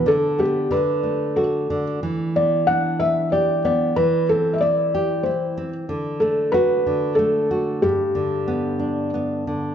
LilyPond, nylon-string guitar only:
\new Staff \with { instrumentName = "Nylon-string guitar" } { \time 3/4 \key g \major \tempo 4 = 92 d8 b8 d8 a8 fis'8 d8 | e8 b8 d'8 b'8 g'8 b8 | e8 c'8 e'8 g'8 e'8 c'8 | d8 a8 fis'8 d8 a8 fis'8 |
g,8 d8 b8 d'8 b8 d8 | }